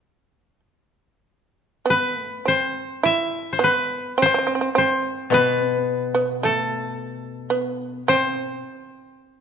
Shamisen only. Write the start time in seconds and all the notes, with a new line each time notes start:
Already playing: A3
1.86 B3
2.21 A3
2.45 C4
3.03 E4
3.59 B3
4.18 C4
4.26 C4
4.34 C4
4.38 C4
4.47 C4
4.55 C4
4.61 C4
4.75 C4
5.32 B3
6.15 B3
6.43 A3
7.50 B3
8.08 C4